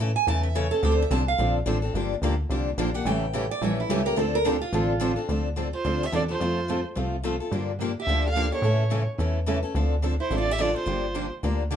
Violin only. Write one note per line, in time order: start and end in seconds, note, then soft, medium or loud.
5.75 6.07 C5 medium
6.06 6.14 E5 medium
6.16 6.22 D5 medium
6.31 6.82 C5 medium
8.02 8.26 E5 medium
8.29 8.52 F5 medium
8.54 9.05 C#5 medium
10.21 10.36 C5 medium
10.39 10.54 D5 medium
10.52 10.63 E5 medium
10.61 10.76 D5 medium
10.78 11.28 C5 medium